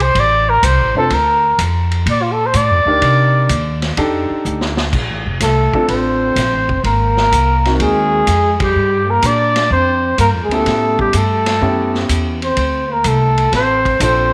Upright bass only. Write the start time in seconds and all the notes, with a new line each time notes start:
Already playing: C2
0.15 A1
0.63 C2
0.79 A1
0.95 F1
1.10 D2
1.59 F2
2.06 A#2
2.54 A2
2.70 F2
2.85 D2
3.01 C3
3.49 D#2
3.97 F2
4.30 muted upright bass stroke
4.45 D2
4.93 A#1
5.10 A1
5.26 F1
5.40 C2
5.88 A1
6.36 A#1
6.53 A1
6.69 F1
6.83 G#1
7.32 C2
7.80 D#2
8.27 F2
8.75 G2
9.23 A#2
9.71 F2
10.18 G2
10.34 F2
10.49 D2
10.66 A2
11.13 G2
11.61 F#2
12.09 E2
12.57 D2
13.05 C2
13.52 A1
14.00 A#1